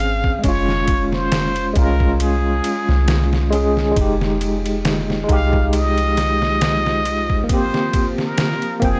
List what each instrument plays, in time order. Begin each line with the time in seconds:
Already playing: 808-style bass G#1, tine electric piano C4 C#4 G#4, muted trumpet F5
0.00 ride
0.24 kick
0.39 tine electric piano G#3
0.43 808-style bass F1, tine electric piano C#4, muted trumpet C#5, kick, ride
0.48 tine electric piano F4
0.69 snare
0.88 kick, ride
1.12 muted trumpet C5, snare
1.32 snare, ride
1.56 ride
1.74 808-style bass C2, tine electric piano G#3 C#4, muted trumpet A#4, kick, ride
1.78 tine electric piano F4
2.00 kick
2.20 muted trumpet G#4, ride
2.64 ride
2.89 808-style bass C2, snare
3.08 snare, ride
3.33 snare
3.51 tine electric piano G#3 C#4, ride
3.55 tine electric piano G#4
3.77 snare
3.91 synth drone F3 F4, tine electric piano G#3
3.96 808-style bass F1, tine electric piano D#4, kick, ride
4.01 tine electric piano G4
4.21 snare
4.41 ride
4.66 ride
4.85 snare, ride
5.10 snare
5.24 tine electric piano G#3
5.28 808-style bass C2, tine electric piano D#4, muted trumpet F5, kick, ride
5.33 tine electric piano G4
5.53 kick
5.73 muted trumpet D#5, ride
5.98 ride
6.17 snare, ride
6.42 snare
6.61 snare, ride
6.86 snare
7.05 ride
7.30 kick
7.44 tine electric piano A#3
7.49 tine electric piano C4, muted trumpet C5, kick, ride
7.54 tine electric piano G4
7.74 snare
7.93 kick, ride
8.18 muted trumpet A#4, snare
8.38 snare, ride
8.62 ride
8.80 808-style bass F1, tine electric piano A#3 C4, kick, ride
8.84 muted trumpet G#4, tine electric piano G5